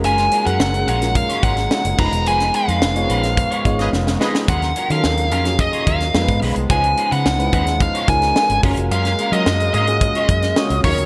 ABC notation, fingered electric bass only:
X:1
M:4/4
L:1/16
Q:1/4=108
K:Gb
V:1 name="Fingered electric bass" clef=bass
G,,,2 z G,, G,,,2 B,,,3 z A,,,2 z G,,, F,,, _F,,, | F,,,2 z F,, F,,,2 B,,,3 z A,,,2 F,,,2 z2 | E,,2 z E, E,,2 F,,3 z E,,2 F,, A,, C,, =C,, | D,,2 z D, D,,2 E,,3 z D,,2 z A,,, G,,, F,,, |
G,,2 z G, G,,2 A,,3 z G,,2 z D,, E,, =D,, |]